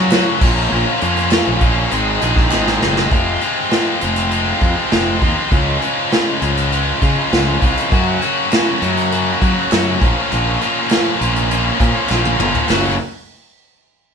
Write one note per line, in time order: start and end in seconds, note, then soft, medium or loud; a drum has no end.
0.00 0.10 C#3 loud
0.00 0.10 F#3 medium
0.00 0.22 F#3 loud
0.00 0.11 A#3 loud
0.00 0.11 C#4 loud
0.00 0.12 F#4 loud
0.00 0.39 A#4 medium
0.00 1.88 C#5 medium
0.00 0.39 F#5 medium
0.11 0.39 F#2 medium
0.11 0.40 C#3 medium
0.11 0.40 F#3 loud
0.11 0.40 A#3 loud
0.11 0.40 C#4 loud
0.11 0.40 F#4 medium
0.11 snare loud
0.11 clap loud
0.11 closed hi-hat medium
0.40 0.66 A#1 medium
0.40 0.70 A#2 loud
0.40 0.70 F3 loud
0.40 0.71 A#3 loud
0.40 0.71 C#4 loud
0.40 0.71 F4 loud
0.40 1.90 A#4 medium
0.40 1.90 F5 medium
0.40 kick loud
0.40 crash medium
0.71 0.84 A#1 loud
0.71 1.00 A#2 loud
0.71 1.00 F3 loud
0.71 1.00 A#3 loud
0.71 1.01 C#4 loud
0.71 1.01 F4 loud
1.01 1.39 F2 medium
1.01 1.30 A#2 medium
1.01 1.30 F3 medium
1.01 1.30 A#3 medium
1.01 1.31 C#4 medium
1.01 1.31 F4 medium
1.01 closed hi-hat medium
1.17 closed hi-hat medium
1.31 1.61 A#2 medium
1.31 1.61 F3 loud
1.31 1.61 A#3 medium
1.31 1.62 C#4 loud
1.31 1.62 F4 loud
1.31 snare loud
1.31 clap medium
1.31 closed hi-hat medium
1.47 1.84 A#1 medium
1.61 1.90 A#2 medium
1.61 1.90 F3 medium
1.61 1.90 A#3 medium
1.61 1.90 C#4 medium
1.61 1.91 F4 medium
1.61 kick medium
1.61 closed hi-hat medium
1.91 2.17 G#1 medium
1.91 2.20 G#2 loud
1.91 2.21 D#3 loud
1.91 2.21 G#3 medium
1.91 2.21 C4 loud
1.91 2.22 D#4 loud
1.91 3.10 G#4 medium
1.91 2.22 G#4 loud
1.91 3.10 C5 medium
1.91 3.11 D#5 medium
1.91 3.10 C6 medium
1.91 closed hi-hat medium
2.21 2.49 A#1 medium
2.21 2.50 G#2 medium
2.21 2.51 D#3 loud
2.21 2.51 G#3 loud
2.21 2.51 C4 loud
2.21 2.52 D#4 loud
2.21 2.52 G#4 loud
2.21 closed hi-hat medium
2.36 kick medium
2.36 snare soft
2.51 2.79 G#1 medium
2.51 2.81 G#2 medium
2.51 2.81 D#3 medium
2.51 2.81 G#3 medium
2.51 2.81 C4 medium
2.51 2.82 D#4 loud
2.51 2.82 G#4 loud
2.51 snare medium
2.51 clap loud
2.68 snare medium
2.82 3.09 F#1 medium
2.82 3.10 G#2 medium
2.82 3.10 D#3 medium
2.82 3.10 G#3 loud
2.82 3.10 C4 loud
2.82 3.11 D#4 loud
2.82 3.11 G#4 medium
2.82 snare medium
2.97 snare medium
3.11 3.36 F1 medium
3.11 3.40 F2 medium
3.11 3.41 C3 loud
3.11 3.42 F3 medium
3.11 3.42 G#3 loud
3.11 3.42 C4 loud
3.11 3.43 F4 loud
3.11 kick loud
3.11 closed hi-hat medium
3.41 3.70 F2 medium
3.41 3.71 C3 medium
3.41 3.71 F3 medium
3.41 3.72 G#3 medium
3.41 3.72 C4 medium
3.41 3.73 F4 medium
3.41 closed hi-hat medium
3.71 4.00 F2 medium
3.71 4.01 C3 medium
3.71 4.01 F3 medium
3.71 4.02 G#3 medium
3.71 4.01 C4 medium
3.71 4.03 F4 loud
3.71 snare loud
3.71 closed hi-hat medium
4.01 4.52 F1 medium
4.01 4.30 F2 medium
4.01 4.30 C3 medium
4.01 4.31 F3 medium
4.01 4.31 G#3 medium
4.01 4.31 C4 medium
4.01 4.32 F4 medium
4.01 closed hi-hat medium
4.16 closed hi-hat medium
4.31 4.60 F2 medium
4.31 4.60 C3 medium
4.31 4.61 F3 loud
4.31 4.61 G#3 loud
4.31 4.61 C4 medium
4.31 4.62 F4 loud
4.31 closed hi-hat medium
4.61 4.90 F2 medium
4.61 4.74 F2 medium
4.61 4.90 C3 medium
4.61 4.91 F3 medium
4.61 4.91 G#3 medium
4.61 4.91 C4 medium
4.61 4.92 F4 loud
4.61 kick medium
4.61 closed hi-hat medium
4.91 5.17 F1 medium
4.91 5.20 F2 loud
4.91 5.21 C3 medium
4.91 5.21 F3 medium
4.91 5.21 G#3 loud
4.91 5.21 C4 loud
4.91 5.22 F4 loud
4.91 snare loud
4.91 closed hi-hat medium
5.21 5.34 D#2 medium
5.21 5.50 F2 medium
5.21 5.50 C3 medium
5.21 5.50 F3 medium
5.21 5.51 G#3 medium
5.21 5.51 C4 loud
5.21 5.51 F4 loud
5.21 kick medium
5.21 closed hi-hat medium
5.51 5.77 C#2 loud
5.51 5.79 C#3 medium
5.51 5.79 F3 medium
5.51 5.80 G#3 loud
5.51 5.81 C#4 loud
5.51 5.81 F4 loud
5.51 kick loud
5.51 closed hi-hat medium
5.80 6.10 C#3 medium
5.80 6.10 F3 medium
5.80 6.11 G#3 medium
5.80 6.12 C#4 medium
5.80 6.11 F4 medium
5.80 closed hi-hat medium
6.11 6.39 C#3 medium
6.11 6.40 F3 loud
6.11 6.40 G#3 medium
6.11 6.41 C#4 medium
6.11 6.40 F4 loud
6.11 snare loud
6.11 closed hi-hat medium
6.40 6.91 C#2 medium
6.40 6.70 C#3 medium
6.40 6.70 F3 medium
6.40 6.71 G#3 medium
6.40 6.71 C#4 medium
6.40 6.71 F4 medium
6.40 closed hi-hat medium
6.57 closed hi-hat medium
6.71 7.00 C#3 medium
6.71 7.00 F3 medium
6.71 7.00 G#3 medium
6.71 7.01 C#4 loud
6.71 7.01 F4 loud
6.71 closed hi-hat medium
7.01 7.30 C#3 medium
7.01 7.14 C#3 medium
7.01 7.30 F3 medium
7.01 7.31 G#3 medium
7.01 7.32 C#4 medium
7.01 7.31 F4 medium
7.01 kick medium
7.01 closed hi-hat medium
7.31 7.57 C#2 loud
7.31 7.59 C#3 medium
7.31 7.60 F3 loud
7.31 7.60 G#3 loud
7.31 7.61 C#4 loud
7.31 7.60 F4 loud
7.31 snare loud
7.31 closed hi-hat medium
7.60 7.74 C2 medium
7.60 7.89 C#3 medium
7.60 7.90 F3 medium
7.60 7.90 G#3 medium
7.60 7.91 C#4 medium
7.60 7.90 F4 medium
7.60 kick medium
7.60 closed hi-hat medium
7.77 closed hi-hat medium
7.90 8.19 F#2 loud
7.90 8.17 F#2 loud
7.90 8.20 C#3 loud
7.90 8.20 F#3 medium
7.90 8.21 A#3 loud
7.90 8.22 C#4 loud
7.90 8.21 F#4 loud
7.90 12.65 A#4 medium
7.90 12.65 C#5 medium
7.90 9.99 F#5 medium
7.90 kick loud
7.90 closed hi-hat medium
8.20 8.49 F#2 medium
8.20 8.49 C#3 medium
8.20 8.50 F#3 medium
8.20 8.51 A#3 medium
8.20 8.51 C#4 medium
8.20 8.51 F#4 medium
8.20 closed hi-hat medium
8.50 8.79 F#2 medium
8.50 8.80 C#3 medium
8.50 8.80 F#3 medium
8.50 8.81 A#3 medium
8.50 8.81 C#4 loud
8.50 8.81 F#4 loud
8.50 snare loud
8.50 clap medium
8.50 closed hi-hat medium
8.80 9.09 F#2 medium
8.80 9.31 F#2 medium
8.80 9.10 C#3 medium
8.80 9.10 F#3 medium
8.80 9.11 A#3 medium
8.80 9.11 C#4 medium
8.80 9.11 F#4 medium
8.80 closed hi-hat medium
8.97 closed hi-hat medium
9.10 9.40 F#2 loud
9.10 9.40 C#3 loud
9.10 9.40 F#3 medium
9.10 9.42 A#3 loud
9.10 9.42 C#4 loud
9.10 9.41 F#4 medium
9.10 closed hi-hat medium
9.41 9.69 F#2 medium
9.41 9.70 C#3 medium
9.41 9.54 F#3 loud
9.41 9.70 F#3 medium
9.41 9.71 A#3 loud
9.41 9.72 C#4 loud
9.41 9.71 F#4 loud
9.41 kick medium
9.41 closed hi-hat medium
9.71 9.99 F#2 loud
9.71 9.97 F#2 loud
9.71 9.99 C#3 loud
9.71 9.99 F#3 medium
9.71 10.00 A#3 loud
9.71 10.01 C#4 loud
9.71 10.00 F#4 loud
9.71 snare loud
9.71 clap medium
9.71 closed hi-hat medium
10.00 10.14 A#1 medium
10.00 10.29 A#2 loud
10.00 10.30 F3 loud
10.00 10.30 A#3 loud
10.00 10.30 C#4 loud
10.00 10.30 F4 loud
10.00 12.66 F5 medium
10.00 kick loud
10.00 closed hi-hat medium
10.30 10.56 A#1 loud
10.30 10.59 A#2 medium
10.30 10.59 F3 medium
10.30 10.60 A#3 medium
10.30 10.60 C#4 loud
10.30 10.60 F4 loud
10.30 closed hi-hat medium
10.60 10.88 A#2 medium
10.60 10.89 F3 medium
10.60 10.89 A#3 medium
10.60 10.90 C#4 medium
10.60 10.90 F4 medium
10.60 closed hi-hat medium
10.90 11.18 A#2 medium
10.90 11.19 F3 loud
10.90 11.19 A#3 medium
10.90 11.19 C#4 loud
10.90 11.20 F4 medium
10.90 snare loud
10.90 clap medium
10.90 closed hi-hat medium
11.19 11.70 A#1 medium
11.19 11.48 A#2 medium
11.19 11.49 F3 medium
11.19 11.49 A#3 medium
11.19 11.49 C#4 medium
11.19 11.50 F4 medium
11.19 closed hi-hat medium
11.36 closed hi-hat medium
11.50 11.78 A#2 loud
11.50 11.78 F3 loud
11.50 11.79 A#3 loud
11.50 11.79 C#4 loud
11.50 11.80 F4 medium
11.50 closed hi-hat medium
11.79 12.08 A#2 medium
11.79 11.93 A#2 loud
11.79 12.08 F3 medium
11.79 12.09 A#3 medium
11.79 12.09 C#4 medium
11.79 12.10 F4 loud
11.79 kick loud
11.79 closed hi-hat medium
12.09 12.35 A#1 loud
12.09 12.38 A#2 loud
12.09 12.38 F3 medium
12.09 12.38 A#3 loud
12.09 12.39 C#4 loud
12.09 12.39 F4 loud
12.09 snare medium
12.09 clap medium
12.25 high tom medium
12.39 12.52 G1 medium
12.39 12.67 A#2 medium
12.39 12.67 F3 medium
12.39 12.68 A#3 loud
12.39 12.68 C#4 medium
12.39 12.68 F4 loud
12.39 mid tom medium
12.55 floor tom medium
12.68 12.97 F#1 medium
12.68 12.93 F#2 loud
12.68 12.93 C#3 loud
12.68 12.93 F#3 loud
12.68 12.93 A#3 loud
12.68 12.97 C#4 medium
12.68 12.94 C#4 loud
12.68 12.97 F#4 medium
12.68 12.94 F#4 medium
12.68 12.97 A#4 medium
12.68 12.96 F#5 medium
12.68 snare medium
12.68 clap medium
12.68 open hi-hat medium